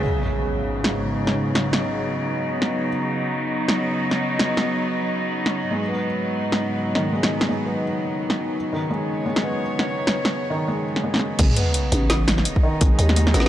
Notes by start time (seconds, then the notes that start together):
Already playing: C#3 F#3 B3
0.03 G#2 D#4, impact
0.84 snare
0.89 D#4
1.27 snare
1.55 snare
1.73 snare
2.62 snare
3.69 snare
4.11 snare
4.39 snare
4.57 snare
5.46 snare
5.71 G#2 G#3
5.89 B3
5.98 C#3
6.52 snare
6.95 D#3, snare
7.13 G#3
7.23 snare
7.41 snare
7.49 G#3
7.66 B3
8.30 snare
8.73 D#3
8.90 G#3 C#5
9.26 G#3
9.36 snare
9.44 B3
9.79 snare
10.07 snare
10.25 snare
10.50 D#3
10.68 G#3
10.96 snare
11.04 G#3
11.14 snare
11.16 snare
11.17 snare
11.19 snare
11.39 G#1 G#3, kick, closed hi-hat, crash, sub drop
11.56 B3, closed hi-hat
11.74 closed hi-hat
11.83 D#4
11.92 A1, closed hi-hat
12.10 snare, closed hi-hat
12.28 snare, closed hi-hat
12.38 snare
12.45 closed hi-hat
12.56 kick
12.63 D#3
12.81 G#1 G#3, kick, closed hi-hat
12.99 D#2, closed hi-hat
13.09 snare
13.16 G#3, closed hi-hat
13.27 snare
13.34 A1 B3, snare, closed hi-hat
13.40 snare